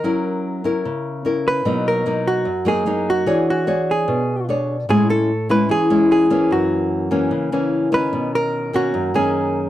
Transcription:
0.00 0.83 F#3 medium
0.00 1.22 A#4 medium
0.04 0.61 C#4 medium
0.04 0.61 E4 medium
0.04 0.62 A#4 medium
0.64 1.22 C#4 medium
0.64 1.22 E4 medium
0.64 1.22 A#4 medium
0.85 1.64 C#3 medium
1.25 1.62 C#4 medium
1.25 1.63 E4 medium
1.25 1.63 A#4 medium
1.48 1.87 B4 loud
1.65 2.44 B2 medium
1.65 2.03 F#3 medium
1.65 2.03 A#3 medium
1.65 2.03 D#4 medium
1.88 2.28 A#4 loud
2.06 2.46 F#3 medium
2.06 2.46 A#3 medium
2.06 2.46 D#4 medium
2.27 2.69 F#4 medium
2.45 3.25 F#2 medium
2.65 2.83 F#3 medium
2.65 2.83 A#3 medium
2.65 2.83 D#4 medium
2.65 3.09 G#4 medium
2.86 3.24 F#3 medium
2.86 3.24 A#3 medium
2.86 3.24 D#4 medium
3.10 3.49 F#4 medium
3.26 4.06 E3 medium
3.26 3.64 D4 medium
3.26 3.64 G#4 medium
3.26 3.65 C#5 medium
3.50 3.90 F#4 medium
3.67 4.22 D4 medium
3.67 4.22 G#4 medium
3.67 4.22 C#5 medium
3.91 4.46 G#4 medium
4.08 4.87 B2 medium
4.49 4.76 D4 medium
4.49 4.76 G#4 soft
4.49 4.76 C#5 medium
4.89 5.68 A2 medium
4.89 5.29 G#3 medium
4.89 5.29 C#4 medium
4.89 5.29 E4 medium
4.89 5.10 G#4 loud
5.10 5.47 A4 loud
5.49 5.87 G#3 medium
5.49 5.87 C#4 medium
5.49 5.87 E4 medium
5.49 5.71 B4 loud
5.69 6.29 E3 medium
5.69 6.11 G#4 loud
5.90 6.27 G#3 medium
5.90 6.27 C#4 medium
5.90 6.28 E4 medium
6.12 6.53 G#4 medium
6.30 7.08 E3 medium
6.30 7.08 A#3 medium
6.30 7.08 C#4 medium
6.51 7.29 F#2 medium
6.51 7.28 F#4 medium
7.11 7.48 E3 medium
7.11 7.48 A#3 medium
7.11 7.49 C#4 medium
7.31 8.10 C#3 medium
7.52 7.89 E3 medium
7.52 7.89 A#3 medium
7.52 7.89 C#4 medium
7.92 8.70 D#3 medium
7.92 8.70 C#4 medium
7.92 8.31 B4 loud
8.13 8.91 B2 medium
8.35 8.75 A#4 loud
8.73 9.10 D#3 medium
8.73 9.11 A#3 medium
8.73 9.11 C#4 medium
8.73 9.16 F#4 medium
8.94 9.69 F#2 medium
9.14 9.69 D#3 medium
9.14 9.69 A#3 medium
9.14 9.69 C#4 medium
9.14 9.69 G#4 medium

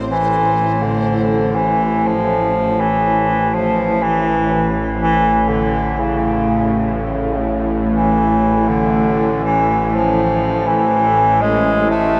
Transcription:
0.00 0.11 C4 medium
0.00 0.11 C5 medium
0.07 12.20 A1 medium
0.07 12.20 A2 medium
0.07 0.84 E3 medium
0.82 1.57 D3 medium
1.56 2.08 E3 medium
2.07 2.82 F3 medium
2.80 3.55 E3 loud
3.54 4.04 F3 medium
4.02 4.73 E3 loud
5.01 5.50 E3 loud
5.49 6.01 D3 medium
5.99 7.46 C#3 medium
7.93 8.70 E3 medium
8.68 9.42 D3 medium
9.44 9.96 E3 medium
9.95 10.69 F3 medium
10.68 11.43 E3 loud
11.41 11.89 G#3 loud
11.90 12.20 A3 loud

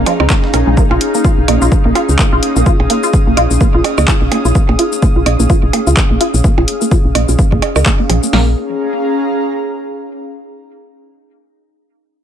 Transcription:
0.00 8.32 C#4 medium
0.00 8.34 D#4 medium
0.00 8.33 G#4 medium
0.00 8.33 F5 medium
0.00 1.69 A#5 medium
0.06 0.12 F3 loud
0.06 closed hi-hat loud
0.06 percussion blips medium
0.06 shaker medium
0.20 0.27 C#2 loud
0.20 0.22 C4 medium
0.20 percussion blips medium
0.30 0.33 A#3 medium
0.30 kick loud
0.30 snare loud
0.30 clap loud
0.30 percussion blips medium
0.30 shaker medium
0.44 snare medium
0.54 0.64 A#1 loud
0.54 0.56 A#4 medium
0.54 closed hi-hat medium
0.54 percussion blips medium
0.54 shaker medium
0.67 0.84 A#1 loud
0.67 0.69 G#3 medium
0.77 0.82 A#3 medium
0.77 kick loud
0.77 shaker soft
0.91 0.98 A#1 loud
0.91 0.93 F4 loud
0.91 percussion blips medium
1.01 closed hi-hat medium
1.14 1.18 A#3 medium
1.14 shaker medium
1.24 1.28 F4 loud
1.24 kick loud
1.24 shaker soft
1.38 1.46 A#1 medium
1.48 1.58 A#1 loud
1.48 1.53 A#3 medium
1.48 closed hi-hat medium
1.48 percussion blips medium
1.62 1.69 A#1 medium
1.62 1.64 F4 loud
1.62 shaker medium
1.67 8.36 D#6 medium
1.72 kick loud
1.72 shaker soft
1.85 1.93 A#1 loud
1.85 1.89 A#3 medium
1.95 1.99 F4 loud
1.95 closed hi-hat medium
1.95 percussion blips medium
2.09 2.16 C#2 loud
2.09 shaker soft
2.19 2.24 A#3 medium
2.19 kick loud
2.19 clap loud
2.19 shaker soft
2.32 2.40 A#1 medium
2.32 2.35 F4 loud
2.43 closed hi-hat medium
2.56 2.64 A#1 loud
2.56 2.60 A#3 medium
2.56 shaker medium
2.66 2.70 F4 loud
2.66 kick loud
2.66 shaker soft
2.80 2.87 A#1 loud
2.80 percussion blips medium
2.90 2.95 A#3 medium
2.90 closed hi-hat medium
3.03 3.06 F4 loud
3.03 shaker medium
3.13 kick loud
3.13 shaker soft
3.27 3.34 A#1 medium
3.27 3.31 A#3 medium
3.37 3.47 A#1 loud
3.37 3.41 F4 loud
3.37 closed hi-hat medium
3.37 percussion blips medium
3.51 3.58 A#1 medium
3.51 shaker medium
3.61 3.66 A#3 medium
3.61 kick loud
3.61 shaker soft
3.74 3.82 A#1 loud
3.74 3.77 F4 loud
3.84 closed hi-hat medium
3.84 percussion blips medium
3.98 4.05 C#2 loud
3.98 4.02 A#3 medium
3.98 percussion blips medium
3.98 shaker medium
4.08 4.11 F4 loud
4.08 kick loud
4.08 clap loud
4.08 percussion blips medium
4.08 shaker soft
4.22 4.29 A#1 medium
4.32 4.37 A#3 medium
4.32 closed hi-hat medium
4.32 percussion blips medium
4.45 4.53 A#1 loud
4.45 4.48 F4 loud
4.45 shaker medium
4.55 kick loud
4.55 shaker soft
4.69 4.76 A#1 loud
4.69 4.73 A#3 medium
4.69 percussion blips soft
4.79 4.82 F4 loud
4.79 closed hi-hat medium
4.92 shaker medium
5.02 5.08 A#3 medium
5.02 kick loud
5.02 shaker soft
5.16 5.23 A#1 medium
5.16 5.19 F4 loud
5.26 5.36 A#1 loud
5.26 closed hi-hat medium
5.26 percussion blips medium
5.40 5.47 A#1 medium
5.40 5.43 A#3 medium
5.40 shaker medium
5.50 5.53 F4 loud
5.50 kick loud
5.50 shaker soft
5.63 5.71 A#1 loud
5.73 5.79 A#3 medium
5.73 closed hi-hat medium
5.73 percussion blips medium
5.87 5.94 C#2 loud
5.87 5.89 F4 loud
5.87 shaker medium
5.97 kick loud
5.97 clap loud
5.97 shaker soft
6.11 6.18 A#1 medium
6.11 6.14 A#3 medium
6.21 6.24 F4 loud
6.21 closed hi-hat medium
6.34 6.42 A#1 loud
6.34 shaker medium
6.44 6.49 A#3 medium
6.44 kick loud
6.44 shaker soft
6.58 6.65 A#1 loud
6.58 6.60 F4 loud
6.58 percussion blips medium
6.68 closed hi-hat medium
6.81 6.85 A#3 medium
6.81 shaker medium
6.91 6.95 F4 loud
6.91 kick loud
6.91 shaker soft
7.05 7.12 A#1 medium
7.15 7.25 A#1 loud
7.15 7.20 A#3 medium
7.15 closed hi-hat medium
7.15 percussion blips medium
7.29 7.36 A#1 medium
7.29 7.31 F4 loud
7.29 shaker medium
7.39 kick loud
7.39 shaker soft
7.52 7.60 A#1 loud
7.52 7.56 A#3 medium
7.52 kick medium
7.62 closed hi-hat medium
7.62 percussion blips medium
7.76 7.83 C#2 loud
7.76 7.78 A#4 medium
7.76 percussion blips medium
7.76 shaker medium
7.86 7.88 A#3 medium
7.86 kick loud
7.86 clap loud
7.86 percussion blips medium
7.86 shaker soft
8.00 8.02 A#3 medium
8.10 8.20 A#1 loud
8.10 8.12 F3 medium
8.10 closed hi-hat medium
8.10 percussion blips medium
8.23 8.27 A#3 medium
8.23 shaker medium
8.33 8.55 A#1 medium
8.33 8.55 A#3 medium
8.33 10.18 C#4 medium
8.33 snare loud
8.33 open hi-hat medium
8.41 10.18 G#4 medium
8.49 10.18 F5 medium
8.55 10.18 A#5 medium

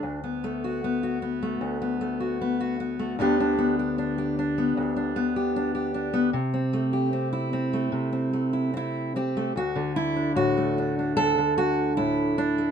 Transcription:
0.00 1.61 D2 medium
0.00 0.23 D4 soft
0.24 0.84 B3 soft
0.44 1.41 A3 soft
0.64 1.02 F#4 soft
0.84 1.22 B3 soft
1.03 2.19 F#4 soft
1.22 1.80 B3 soft
1.42 2.00 A3 soft
1.61 3.17 D2 medium
1.82 2.40 B3 soft
2.01 2.98 A3 soft
2.20 2.59 F#4 soft
2.41 2.79 B3 soft
2.60 3.15 F#4 soft
2.80 3.19 B3 soft
2.99 3.15 A3 soft
3.19 4.76 D2 medium
3.19 6.34 D3 soft
3.19 3.57 B3 soft
3.19 3.39 D4 soft
3.19 3.79 G4 medium
3.40 3.97 D4 medium
3.58 4.57 B3 soft
3.79 4.18 G4 soft
3.98 4.38 D4 soft
4.18 5.35 G4 soft
4.39 4.95 D4 soft
4.58 5.15 B3 soft
4.77 6.34 D2 medium
4.96 5.55 D4 soft
5.16 6.12 B3 soft
5.36 5.73 G4 soft
5.56 5.93 D4 medium
5.75 6.29 G4 soft
5.94 6.29 D4 soft
6.13 6.29 B3 soft
6.33 7.91 C3 medium
6.54 7.12 C4 soft
6.73 7.72 A3 soft
6.93 7.32 G4 soft
7.13 7.52 C4 soft
7.33 8.52 E4 soft
7.53 8.11 C4 soft
7.73 8.32 A3 soft
7.92 9.51 C3 medium
8.13 8.72 C4 soft
8.33 9.35 A3 soft
8.53 8.76 E4 soft
8.74 9.15 C4 soft
8.74 9.16 E4 medium
9.16 9.51 C4 soft
9.16 9.57 G4 medium
9.37 9.52 A3 soft
9.56 11.18 D2 medium
9.56 9.96 F#4 medium
9.76 11.38 D3 medium
9.96 10.36 E4 medium
10.16 10.78 D4 soft
10.35 11.37 A2 medium
10.35 11.16 F#4 medium
10.57 12.57 A3 soft
10.78 10.98 D4 soft
10.99 12.38 D4 soft
11.17 12.71 D2 medium
11.17 11.57 A4 medium
11.38 12.71 D3 soft
11.58 11.97 F#4 medium
11.97 12.71 A2 medium
11.97 12.71 E4 medium
12.38 12.71 D4 medium
12.58 12.71 A3 soft

